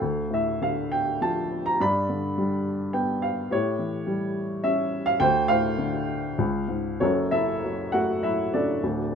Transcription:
0.00 1.77 D2 medium
0.00 0.73 A4 soft
0.00 0.34 F5 medium
0.30 1.47 A2 soft
0.30 0.64 E5 medium
0.62 1.77 D3 soft
0.62 0.93 F5 medium
0.92 1.20 G5 medium
1.21 1.79 F3 medium
1.21 1.68 A5 medium
1.66 1.81 A#5 medium
1.80 3.48 G2 medium
1.80 2.63 D5 medium
1.80 2.63 B5 medium
2.09 3.20 D3 soft
2.38 3.48 G3 soft
2.93 3.49 B3 medium
2.93 3.21 G5 medium
3.22 3.49 F5 medium
3.51 5.17 A2 medium
3.51 4.61 G4 medium
3.51 4.69 C#5 medium
3.79 4.89 E3 medium
4.07 5.17 G3 soft
4.63 5.19 C#4 medium
4.63 5.04 E5 medium
5.06 5.21 F5 loud
5.20 6.36 D2 medium
5.20 5.48 C5 medium
5.20 5.50 G5 loud
5.48 6.37 A2 medium
5.48 6.67 C5 medium
5.48 6.66 F5 loud
5.78 6.38 D3 medium
6.38 6.99 C#2 medium
6.68 7.00 G#2 medium
7.00 8.78 F#1 medium
7.00 8.78 F#2 medium
7.00 7.31 C#4 medium
7.00 7.30 F#4 medium
7.00 7.30 A4 medium
7.00 7.29 C#5 medium
7.31 8.49 C#3 soft
7.31 7.89 E4 medium
7.31 7.90 A4 medium
7.31 7.94 E5 medium
7.64 8.22 F#3 soft
7.92 8.80 A3 medium
7.92 8.22 F#4 medium
7.92 8.23 F#5 medium
8.23 8.81 F#3 soft
8.23 8.51 E4 medium
8.23 8.54 E5 medium
8.54 8.82 C#3 soft
8.54 9.09 D4 medium
8.54 9.09 F#4 medium
8.54 9.09 A4 medium
8.54 9.08 D5 medium
8.83 9.15 D1 medium
8.83 9.15 D2 medium

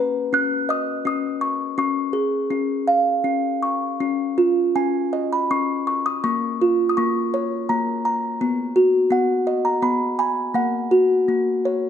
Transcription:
0.00 0.31 C#4 medium
0.00 1.42 B4 medium
0.33 1.04 C#4 medium
0.33 0.50 F#6 loud
0.69 1.78 D#5 medium
0.69 1.06 D#6 medium
1.05 1.77 C#4 medium
1.05 1.81 D#6 medium
1.41 1.77 C#6 medium
1.78 2.49 C#4 medium
1.78 3.22 C#6 medium
2.13 3.63 G#4 medium
2.50 3.23 C#4 medium
2.88 4.00 F5 medium
3.24 3.99 C#4 medium
3.63 4.00 C#6 medium
4.00 4.74 C#4 medium
4.38 5.87 F4 medium
4.75 5.49 C#4 medium
4.75 5.33 G#5 medium
5.13 6.23 D#5 medium
5.33 5.51 B5 medium
5.51 6.24 C#4 medium
5.51 5.86 C#6 medium
5.87 6.23 C#6 medium
6.06 6.24 D#6 medium
6.24 6.97 A#3 medium
6.24 6.92 C#6 loud
6.61 8.05 F4 medium
6.89 6.96 D#6 medium
6.97 7.68 A#3 medium
6.97 7.71 C#6 medium
7.34 8.40 C#5 medium
7.69 8.40 A#3 medium
7.69 8.04 A#5 medium
8.05 8.40 A#5 medium
8.41 9.09 B3 medium
8.76 10.20 F#4 medium
9.11 9.81 B3 medium
9.11 9.67 F#5 medium
9.47 10.56 D#5 medium
9.65 9.73 A#5 medium
9.82 10.55 B3 medium
9.82 9.99 B5 medium
10.19 10.57 G#5 medium
10.19 10.56 B5 medium
10.54 11.27 A#3 medium
10.54 11.90 F#5 medium
10.91 11.90 F#4 medium
11.28 11.90 A#3 medium
11.65 11.90 C#5 medium

